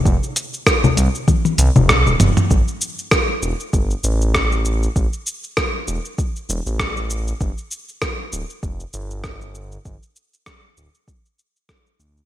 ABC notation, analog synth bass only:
X:1
M:4/4
L:1/16
Q:"Swing 16ths" 1/4=98
K:Am
V:1 name="Analog synth bass" clef=bass
F,,, z4 z C,, z3 C,, F,,, C,, D,,, F,,, z | A,,, z4 z E,,, z G,,, z A,,,4- A,,, z | A,,, z4 z E,,, z3 E,,, A,,,4 z | G,,, z4 z D,,, z F,,, z G,,,4- G,,, z |
G,,, z4 z D,,, z6 z D,, z |]